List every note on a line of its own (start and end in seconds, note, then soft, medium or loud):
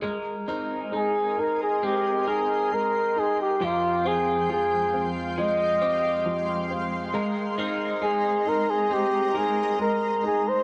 0.02 0.91 G#3 medium
0.02 3.61 G#3 medium
0.02 3.58 A#4 medium
0.02 0.48 A#4 soft
0.02 3.58 D#5 medium
0.02 1.81 G#5 medium
0.02 3.58 C6 medium
0.48 1.83 C4 soft
0.48 1.36 D#4 soft
0.48 0.92 D#4 soft
0.48 2.26 A#4 soft
0.92 1.81 G#3 soft
0.92 3.70 D#4 soft
0.92 1.41 G#4 medium
1.37 2.25 D#4 soft
1.37 1.61 A#4 medium
1.63 1.86 G#4 medium
1.81 2.70 G#3 soft
1.81 4.05 C4 medium
1.81 2.30 G4 medium
1.81 7.10 G5 medium
2.27 3.15 D#4 soft
2.27 2.75 G#4 medium
2.27 3.61 A#4 soft
2.72 3.59 G#3 soft
2.72 3.21 A#4 medium
3.16 3.60 D#4 soft
3.16 3.40 G#4 medium
3.42 3.66 G4 medium
3.60 7.14 F2 medium
3.60 4.48 F3 medium
3.60 10.63 G#3 medium
3.60 4.09 F4 medium
3.60 4.06 G4 medium
3.60 7.10 F5 medium
3.60 10.63 C6 medium
4.05 4.92 C4 soft
4.05 7.56 C4 soft
4.05 4.48 F4 soft
4.05 4.51 G#4 medium
4.49 5.36 F3 soft
4.49 7.23 F4 soft
4.49 5.09 G#4 medium
4.93 5.80 C4 soft
5.38 6.24 F3 soft
5.38 7.14 G#3 medium
5.38 6.67 D#5 medium
5.81 6.69 C4 soft
5.81 7.14 G4 medium
6.26 7.11 F3 soft
6.70 7.13 C4 soft
7.13 8.00 G#3 medium
7.13 10.63 G#3 medium
7.13 7.58 A#4 medium
7.13 10.63 D#5 medium
7.13 10.63 A#5 medium
7.58 8.90 C4 medium
7.58 8.45 D#4 soft
7.58 8.01 D#4 soft
7.58 9.34 A#4 medium
8.01 8.88 G#3 soft
8.01 10.63 D#4 soft
8.01 8.50 G#4 medium
8.46 9.32 D#4 soft
8.46 8.72 A#4 medium
8.70 8.95 G#4 medium
8.90 9.77 G#3 soft
8.90 10.63 C4 medium
8.90 9.39 G4 medium
9.34 10.22 D#4 soft
9.34 10.63 A#4 soft
9.38 9.81 G#4 medium
9.79 10.63 G#3 soft
9.79 10.22 A#4 medium
10.23 10.63 D#4 soft
10.23 10.50 G#4 medium
10.48 10.63 C5 medium